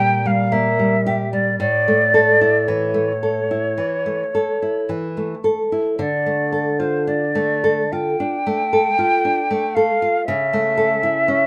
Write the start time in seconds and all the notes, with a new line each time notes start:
Already playing: A#2 G3 G5
0.00 G4
0.26 G3 F5
0.52 A#3 E5
0.79 G3
1.06 G4
1.32 G3 D5
1.59 A2 D5
1.88 A3
2.14 A4
2.41 E4
2.68 E3 C#5
2.94 A3
3.23 A4
3.51 E4
3.78 E3
4.06 A3
4.35 A4
4.62 E4
4.89 E3
5.17 A3
5.44 A4
5.72 E4
5.99 D3 D5
6.26 A3
6.52 A4
6.79 F4 C5
7.07 D4 D5
7.35 A3
7.64 A4
7.92 F4 G5
8.20 D4
8.47 A3
8.73 A4
8.99 F4
9.25 D4
9.51 A3
9.75 A4 F5
10.02 F4
10.26 C#3 E5
10.53 A3
10.77 A4
11.03 E4
11.28 C#4